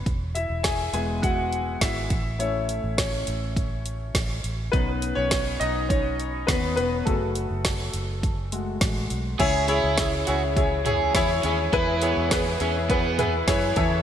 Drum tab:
CC |--------|--------|--------|--------|
HH |xxxxxxxx|xxxxxxxx|xxxxxxxx|xxxxxxxx|
SD |--o---o-|--o---o-|--o---o-|--o---o-|
FT |--------|--------|--------|--------|
BD |o-o-o-oo|--o-o-o-|o-o-o-o-|o-o-o-o-|

CC |x-------|--------|
HH |xxxxxxxx|xxxxxxxx|
SD |--o---o-|--o---o-|
FT |-----o--|-----o--|
BD |o-o-o-o-|o-o-o-oo|